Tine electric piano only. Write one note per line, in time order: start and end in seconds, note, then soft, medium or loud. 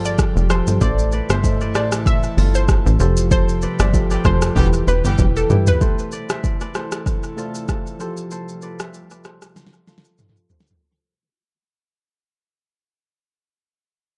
0.00 0.49 F3 medium
0.00 0.50 F4 medium
0.00 0.50 G4 medium
0.00 0.82 G#4 medium
0.00 0.51 A4 loud
0.49 0.71 F3 medium
0.49 0.72 F4 medium
0.49 0.72 G4 medium
0.49 0.72 A4 medium
0.80 1.23 A3 medium
0.80 1.23 A4 medium
0.80 1.24 C5 medium
0.80 1.24 E5 medium
1.42 2.27 A3 medium
1.42 2.27 A4 medium
1.42 2.28 C5 medium
1.42 1.51 D#5 medium
1.51 2.31 E5 medium
2.99 3.76 F3 loud
2.99 3.76 F4 medium
2.99 3.76 G4 medium
2.99 3.77 A4 loud
3.92 4.56 F3 medium
3.92 4.56 F4 medium
3.92 4.55 G4 medium
3.92 4.57 A4 medium
4.55 5.32 E3 loud
4.55 5.32 E4 medium
4.55 5.33 G4 medium
4.55 5.33 B4 loud
5.49 5.71 E3 medium
5.49 5.71 E4 medium
5.49 5.72 G4 medium
5.49 5.72 B4 medium
5.80 6.64 A3 medium
5.80 6.65 A4 medium
5.80 6.65 C5 medium
5.80 6.66 E5 medium
7.36 7.99 A3 medium
7.36 7.99 A4 medium
7.36 8.00 C5 medium
7.36 7.45 D5 medium
7.45 8.04 E5 medium
7.99 9.00 F3 medium
7.99 9.00 F4 medium
7.99 9.01 G4 medium
7.99 9.01 A4 loud
10.36 10.49 F4 medium
10.50 10.66 A4 medium
10.67 10.97 C5 medium